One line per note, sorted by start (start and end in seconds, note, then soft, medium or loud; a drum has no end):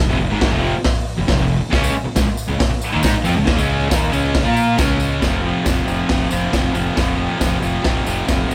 0.09 0.20 F1 loud
0.09 0.19 F2 medium
0.09 0.19 C3 loud
0.20 0.31 F1 medium
0.20 0.30 F2 medium
0.20 0.31 C3 medium
0.30 0.52 G#1 loud
0.30 0.52 G#2 loud
0.30 0.52 D#3 medium
0.30 0.53 G#3 loud
0.41 kick loud
0.41 snare loud
0.41 open hi-hat medium
0.52 0.74 F1 loud
0.52 0.74 F2 medium
0.52 0.74 C3 loud
0.52 0.75 F3 loud
0.84 kick loud
0.84 snare loud
0.84 open hi-hat medium
1.18 1.28 F1 medium
1.18 1.27 F2 medium
1.18 1.27 C3 medium
1.28 1.39 F1 medium
1.28 1.37 F2 medium
1.28 1.38 C3 medium
1.28 kick loud
1.28 snare loud
1.28 open hi-hat medium
1.38 1.60 F1 medium
1.38 1.57 F2 medium
1.38 1.57 C3 medium
1.70 1.93 C#2 loud
1.70 1.93 C#3 medium
1.70 1.93 G#3 loud
1.70 1.94 C#4 loud
1.70 kick loud
1.70 snare loud
1.70 open hi-hat medium
1.84 tambourine medium
1.94 muted distorted electric guitar stroke medium
2.04 muted distorted electric guitar stroke medium
2.04 muted fingered electric bass stroke soft
2.16 2.27 C#2 medium
2.16 2.26 C#3 medium
2.16 2.28 G#3 medium
2.16 kick loud
2.16 snare loud
2.16 open hi-hat medium
2.16 tambourine loud
2.27 muted distorted electric guitar stroke medium
2.27 muted fingered electric bass stroke soft
2.27 tambourine soft
2.37 tambourine medium
2.48 2.60 C#2 medium
2.48 2.58 C#3 medium
2.48 2.60 G#3 medium
2.59 muted distorted electric guitar stroke medium
2.59 muted fingered electric bass stroke soft
2.59 kick loud
2.59 snare loud
2.59 open hi-hat medium
2.59 tambourine soft
2.70 muted distorted electric guitar stroke medium
2.70 muted fingered electric bass stroke soft
2.82 tambourine medium
2.92 3.03 D#2 medium
2.92 3.03 D#3 loud
2.92 3.02 A#3 loud
3.02 3.14 G#2 loud
3.02 3.14 G#3 loud
3.02 3.14 D#4 loud
3.02 kick loud
3.02 snare loud
3.02 open hi-hat medium
3.02 tambourine loud
3.14 muted distorted electric guitar stroke medium
3.18 muted fingered electric bass stroke soft
3.24 3.37 F2 loud
3.24 3.35 F3 loud
3.24 3.36 C4 loud
3.24 tambourine medium
3.36 3.47 C#2 medium
3.36 3.45 C#3 medium
3.36 3.46 G#3 medium
3.36 tambourine soft
3.45 3.58 D#2 loud
3.45 3.56 D#3 loud
3.45 3.57 A#3 loud
3.45 kick loud
3.45 snare loud
3.45 open hi-hat medium
3.56 3.90 C#2 loud
3.56 3.88 C#3 medium
3.56 3.89 G#3 loud
3.56 3.89 C#4 loud
3.56 tambourine medium
3.80 tambourine soft
3.88 4.12 D#2 loud
3.88 4.10 D#3 loud
3.88 4.11 A#3 medium
3.88 4.12 D#4 medium
3.88 kick loud
3.88 snare loud
3.88 open hi-hat medium
3.88 tambourine loud
4.11 4.44 C#2 loud
4.11 4.44 C#3 medium
4.11 4.43 G#3 loud
4.11 4.44 C#4 loud
4.11 tambourine medium
4.25 tambourine soft
4.35 kick loud
4.35 snare loud
4.35 open hi-hat medium
4.35 tambourine soft
4.44 4.77 A#2 loud
4.44 4.77 A#3 medium
4.44 4.77 F4 medium
4.44 4.78 A#4 loud
4.44 tambourine soft
4.57 tambourine medium
4.68 tambourine soft
4.76 5.19 C#2 loud
4.76 5.21 C#3 medium
4.76 5.21 G#3 loud
4.76 5.21 C#4 loud
4.76 kick loud
4.76 snare loud
4.76 open hi-hat medium
4.76 tambourine medium
4.90 tambourine soft
5.00 tambourine medium
5.12 tambourine soft
5.19 5.51 F1 medium
5.19 5.63 F2 medium
5.19 5.45 C3 medium
5.19 5.42 F3 medium
5.19 kick loud
5.19 snare loud
5.19 open hi-hat medium
5.19 tambourine medium
5.42 5.64 C3 medium
5.42 5.67 F3 medium
5.63 5.80 F1 loud
5.63 6.07 F2 medium
5.63 5.87 C3 medium
5.63 5.85 F3 loud
5.63 kick loud
5.63 snare loud
5.63 open hi-hat medium
5.63 tambourine loud
5.85 6.02 F1 medium
5.85 6.08 C3 medium
5.85 6.10 F3 medium
5.85 tambourine medium
6.07 6.24 F1 medium
6.07 6.33 F2 medium
6.07 6.31 C3 medium
6.07 6.29 F3 medium
6.07 kick loud
6.07 snare loud
6.07 open hi-hat medium
6.30 6.46 F1 medium
6.30 6.50 F2 medium
6.30 6.51 C3 medium
6.30 6.54 F3 medium
6.30 tambourine medium
6.50 6.68 F1 medium
6.50 6.94 F2 medium
6.50 6.74 C3 medium
6.50 6.72 F3 medium
6.50 kick loud
6.50 snare loud
6.50 open hi-hat medium
6.50 tambourine medium
6.72 6.89 F1 medium
6.72 6.95 C3 medium
6.72 6.97 F3 medium
6.72 tambourine medium
6.94 7.26 F1 medium
6.94 7.38 F2 medium
6.94 7.18 C3 loud
6.94 7.15 F3 medium
6.94 kick loud
6.94 snare loud
6.94 open hi-hat medium
6.94 tambourine medium
7.15 7.39 C3 medium
7.15 7.41 F3 medium
7.38 7.55 F1 loud
7.38 7.82 F2 medium
7.38 7.62 C3 loud
7.38 7.60 F3 loud
7.38 kick loud
7.38 snare loud
7.38 open hi-hat medium
7.38 tambourine loud
7.60 7.77 F1 medium
7.60 7.84 C3 medium
7.60 7.86 F3 medium
7.60 tambourine medium
7.83 7.99 F1 medium
7.83 8.08 F2 medium
7.83 8.05 C3 medium
7.83 8.04 F3 medium
7.83 kick loud
7.83 snare loud
7.83 open hi-hat medium
8.05 8.21 F1 medium
8.05 8.27 F2 medium
8.05 8.28 C3 medium
8.05 8.30 F3 loud
8.05 tambourine medium
8.27 8.43 F1 medium
8.27 8.55 F2 medium
8.27 8.51 C3 medium
8.27 8.48 F3 medium
8.27 kick loud
8.27 snare loud
8.27 open hi-hat medium
8.27 tambourine loud
8.48 8.55 F1 medium
8.48 8.55 F3 medium
8.48 tambourine medium